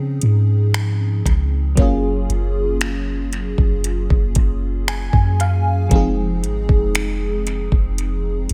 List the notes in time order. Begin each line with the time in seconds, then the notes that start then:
Already playing: C#3 F3 C4 C#4 D#4 G#4
0.22 G#2, closed hi-hat
0.74 finger snap, closed hi-hat
1.26 C#2, kick, closed hi-hat
1.75 F#1 F#3 A#3 C#4, kick, closed hi-hat
1.80 F4 G#4
2.29 F#1, closed hi-hat
2.81 finger snap, closed hi-hat
3.33 closed hi-hat
3.58 F#1, kick
3.84 closed hi-hat
4.10 F#1, kick
4.35 kick, closed hi-hat
4.88 G#5, finger snap, closed hi-hat
5.13 F#2, kick
5.40 F5, closed hi-hat
5.89 F1 F3 G#3 C4, kick, closed hi-hat
5.94 D#4 G#4
6.43 G#1, closed hi-hat
6.69 F1, kick
6.95 finger snap, closed hi-hat
7.47 closed hi-hat
7.72 F1, kick
7.98 closed hi-hat
8.49 closed hi-hat